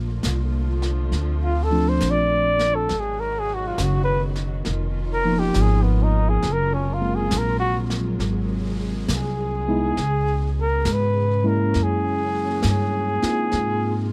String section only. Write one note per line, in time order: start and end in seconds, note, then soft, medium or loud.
0.00 2.86 D3 medium
0.00 2.86 F3 medium
0.00 2.87 A3 medium
0.00 1.11 A#3 soft
0.00 2.87 F4 medium
1.13 2.88 C4 medium
2.85 6.37 B2 medium
2.85 6.38 D#3 medium
2.85 4.63 F#3 medium
2.85 4.63 G#3 medium
2.85 4.62 F#4 medium
4.67 6.42 C#4 medium
4.67 6.42 F4 medium
4.67 9.93 A#4 medium
6.44 9.94 C3 medium
6.44 9.94 F#3 medium
6.44 11.71 G#3 medium
6.44 8.19 F4 medium
8.20 11.70 G#4 medium
9.96 11.72 B2 medium
9.96 13.47 C#3 medium
11.74 13.50 F#3 medium
11.74 13.50 A#3 medium
11.74 14.12 G#4 medium
13.52 14.12 C3 medium
13.52 14.12 A#3 medium
13.52 14.12 F4 medium